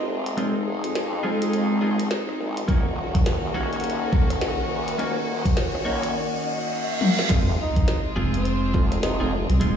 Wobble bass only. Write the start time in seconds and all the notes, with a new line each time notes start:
Already playing: F1
0.84 F2
1.71 A#1
2.39 A#1
2.68 D#1
3.26 F#1
3.55 D#1
3.83 F#1
4.12 D#1
4.59 D#1
5.74 C#2
7.30 F1
8.74 F1
9.21 F1